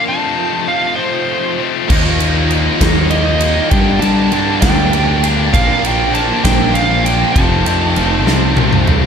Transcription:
Already playing: A5
0.07 F2 C3 F3 A3 C4 F4 D#5 A5
0.68 C3 F3 A3 C4 F5
0.96 F3 A3 C4 C5
1.00 F2 C3
1.58 F3 A3 C4
1.89 D#2 D#3 F3 A#3 D#4 D#5 A#5, kick, crash
2.20 F3 A#3 D#4, ride
2.50 D#3 F3 A#3 D#4, ride
2.81 D#2 D#3 F3 A#3 D#4, kick, snare, ride
3.10 D#3 F3 A#3 D#4 D#5, ride
3.41 F3 A#3 D#4, ride
3.70 G2 D3 G3 A#3 D4 G4 A#4 G5 A5, kick, ride
4.01 G3 A#3 D4 A5, ride
4.31 G2 D3 G3 A#3 D4, ride
4.62 D2 G2 D3 G3 A#3 D4 G5, kick, snare, ride
4.93 G2 D3 G3 A#3 D4, ride
5.22 G3 A#3 D4, ride
5.51 A#1 A#2 F3 A#3 D4 F5 A5, kick, ride
5.84 F3 A#3 D4 G5, ride
6.14 A#2 F3 A#3 D4 A5, ride
6.44 A#1 A#2 F3 A#3 D4 G5, kick, snare, ride
6.73 A#2 F3 A#3 D4 F5, ride
7.05 F3 A#3 D4 G5, ride
7.33 F1 F2 C3 F3 A3 D#4 A4 F5 A5, kick, ride
7.37 C4
7.66 F2 F3 A3 C4, ride
7.96 F1 C3 F3 A3 C4, ride
8.26 C2 F2 C3 F3 A3 C4, snare
8.54 F2 C3 F3 A3 C4, high tom
8.72 mid tom
8.87 F3 A3 C4, mid tom

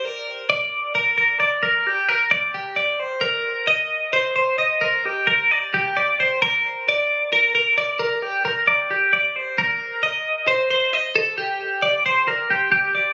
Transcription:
0.05 A#4
0.50 D5
0.95 A#4
1.18 A#4
1.40 D5
1.63 A#4
1.87 G4
2.09 A#4
2.31 D5
2.54 G4
2.76 D5
3.00 C5
3.21 A#4
3.67 D#5
4.13 C5
4.36 C5
4.58 D#5
4.81 A#4
5.05 G4
5.27 A#4
5.51 D5
5.74 G4
5.97 D5
6.20 C5
6.42 A#4
6.89 D5
7.33 A#4
7.55 A#4
7.78 D5
7.99 A#4
8.22 G4
8.45 A#4
8.68 D5
8.91 G4
9.13 D5
9.36 C5
9.58 A#4
10.03 D#5
10.48 C5
10.71 C5
10.93 D#5
11.16 A4
11.38 G4
11.82 D5
12.06 C5
12.28 A#4
12.50 G4
12.72 G4
12.95 D5

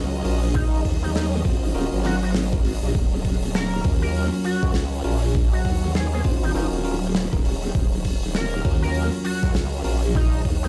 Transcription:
Already playing: C#2 F#3 C#4 F4 F#4 A#4 D#5
0.13 open hi-hat
0.24 A#1 C#4 F4 F#4 A#4, open hi-hat
0.43 open hi-hat
0.54 D#4, kick, open hi-hat
0.73 open hi-hat
0.85 D#2, kick, open hi-hat
1.02 D#4, open hi-hat
1.15 D#4, snare, open hi-hat
1.33 open hi-hat
1.45 G#1 C#4 F4 F#4 C5, kick, open hi-hat
1.63 open hi-hat
1.75 D#1 C#4 F4 F#4 A#4, open hi-hat
1.92 G#1, open hi-hat
2.05 C#4 F4 F#4 A#4, open hi-hat
2.23 F#4, open hi-hat
2.35 snare, open hi-hat
2.52 C#4 F4 F#4 A#4, kick, cross-stick, open hi-hat
2.65 cross-stick, open hi-hat
2.82 A#1, open hi-hat
2.95 D#1, kick, open hi-hat
3.12 open hi-hat
3.25 kick, open hi-hat
3.43 open hi-hat
3.54 A#4, snare, open hi-hat
3.73 open hi-hat
3.84 D#2 C#4 F4 F#4 A#4, kick, open hi-hat
4.02 A#4, open hi-hat
4.15 open hi-hat
4.32 cross-stick, open hi-hat
4.44 F#4, open hi-hat
4.63 C#2, kick
4.74 snare, open hi-hat
4.92 open hi-hat
5.04 A#1 C#4 F4 F#4 A#4, open hi-hat
5.23 open hi-hat
5.35 kick, open hi-hat
5.53 F#4, open hi-hat
5.65 D#2, kick, open hi-hat
5.95 G#4, cross-stick, snare, open hi-hat
6.13 G#4, open hi-hat
6.24 G#1 C#4 F4 F#4 C5, kick, open hi-hat
6.43 D#4, open hi-hat
6.55 F#1 C#4 D#4 F4 F#4 A#4, open hi-hat
6.72 D#1, open hi-hat
6.84 C#4 F4 F#4 A#4, open hi-hat
7.03 open hi-hat
7.15 snare, open hi-hat
7.32 D#1 C#4 F4 F#4 A#4, kick, cross-stick, open hi-hat
7.44 D#1, cross-stick, open hi-hat
7.62 open hi-hat
7.75 D#1, kick, open hi-hat
7.93 open hi-hat
8.05 kick, open hi-hat
8.23 open hi-hat
8.34 A#4, snare, open hi-hat
8.53 open hi-hat
8.64 D#2 C#4 F4 F#4 A#4, kick, open hi-hat
8.82 A#4, open hi-hat
8.94 open hi-hat
9.12 cross-stick, open hi-hat
9.24 F#4, open hi-hat
9.42 C#2, kick, open hi-hat
9.54 snare, open hi-hat
9.72 open hi-hat
9.84 A#1 C#4 F4 F#4 A#4, open hi-hat
10.02 open hi-hat
10.15 D#4, kick, open hi-hat
10.33 open hi-hat
10.45 D#2, kick, open hi-hat
10.63 D#4, open hi-hat

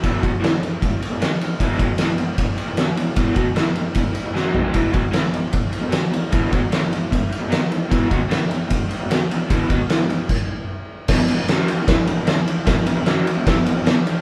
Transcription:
0.02 E2 B2 E3, kick, ride
0.20 B2 F#3, kick
0.24 ride
0.31 muted overdriven electric guitar stroke
0.40 A2 E3, ride
0.45 snare
0.52 E2 B2
0.60 E2 B2, ride
0.82 E2 B2, kick, ride
1.01 muted overdriven electric guitar stroke, ride
1.11 E2 B2
1.21 B2 F#3, snare, ride
1.32 muted overdriven electric guitar stroke
1.41 E2 B2, ride
1.60 E2 B2 E3, kick, ride
1.79 B2 F#3, kick, ride
1.91 muted overdriven electric guitar stroke
1.98 A2 E3, snare, ride
2.09 E2 B2
2.18 E2 B2, ride
2.38 E2 B2, kick, ride
2.58 muted overdriven electric guitar stroke, ride
2.67 E2 B2
2.77 B2 F#3, snare, ride
2.87 muted overdriven electric guitar stroke
2.97 E2 B2, ride
3.16 E2 B2 E3, kick, ride
3.36 B2 F#3, kick, ride
3.45 muted overdriven electric guitar stroke
3.56 A2 E3, snare, ride
3.66 E2 B2
3.75 E2 B2, ride
3.95 E2 B2, kick, ride
4.14 muted overdriven electric guitar stroke, ride
4.24 E2 B2
4.33 F#2 C#3 F#3, snare
4.52 E2 B2, floor tom
4.63 B2 F#3
4.73 E2 B2 E3, kick, ride
4.92 B2 F#3, kick, ride
5.03 muted overdriven electric guitar stroke
5.12 A2 E3, snare, ride
5.23 E2 B2
5.32 E2 B2, ride
5.52 E2 B2, kick, ride
5.70 muted overdriven electric guitar stroke, ride
5.80 E2 B2
5.90 B2 F#3, snare, ride
6.01 muted overdriven electric guitar stroke
6.11 E2 B2, ride
6.31 E2 B2 E3, kick, ride
6.51 B2 F#3, kick, ride
6.63 muted overdriven electric guitar stroke
6.72 A2 E3, snare, ride
6.81 E2 B2
6.91 E2 B2, ride
7.11 E2 B2, kick, ride
7.30 muted overdriven electric guitar stroke, ride
7.40 E2 B2
7.48 B2 F#3, ride
7.53 snare
7.60 muted overdriven electric guitar stroke
7.69 E2 B2, ride
7.89 E2 B2 E3, kick, ride
8.09 B2 F#3, kick, ride
8.21 muted overdriven electric guitar stroke
8.29 A2 E3, snare, ride
8.40 E2 B2
8.49 E2 B2, ride
8.68 E2 B2, kick, ride
8.89 muted overdriven electric guitar stroke, ride
9.00 E2 B2
9.10 B2 F#3, snare, ride
9.21 muted overdriven electric guitar stroke
9.31 E2 B2, ride
9.49 E2 B2 E3, kick, ride
9.70 B2 F#3, kick, ride
9.79 muted overdriven electric guitar stroke
9.90 A2 E3, snare, ride
9.99 E2 B2
10.09 E2 B2, ride
10.29 kick, crash
11.08 E2 B2, kick, snare, crash
11.18 E2 B2
11.28 E2 B2, ride
11.38 E2 B2
11.48 F#2 C#3 F#3, snare, ride
11.68 muted overdriven electric guitar stroke, ride
11.76 E2 B2
11.87 A2 E3, kick, snare, ride
11.96 E2 B2
12.06 E2 B2, ride
12.16 E2 B2
12.25 E2 B2, snare, ride
12.48 ride
12.66 E2 B2, kick, snare, ride
12.77 E2 B2
12.87 E2 B2, ride
12.96 E2 B2
13.06 F#2 C#3 F#3, snare, ride
13.27 muted overdriven electric guitar stroke, ride
13.36 E2 B2
13.45 A2 E3, kick, snare, ride
13.57 E2 B2
13.65 E2 B2, ride
13.75 E2 B2
13.84 E2 B2, snare, ride
14.07 ride

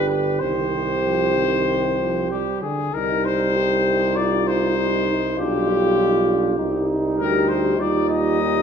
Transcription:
Already playing: G1 D3 D4 G4
0.08 B4
0.39 C2 D#3 C4 G4 C5
1.04 F3
1.36 D#3
2.00 F3
2.31 G3 G4
2.61 D3 G#4
2.94 C2 G3 D#4 A#4
3.25 C5
3.56 G4
4.16 F4 D5
4.47 C5
4.77 D#4
5.08 D#4
5.36 B1 G3 D4 F4 G4
5.68 F4
5.98 D#4
6.29 D4
6.58 C2 G3 D#4
7.18 D2 G4 A#4
7.48 C5
7.77 D#2 G3 D#4 F4 D5
8.09 D#5
8.40 D#4

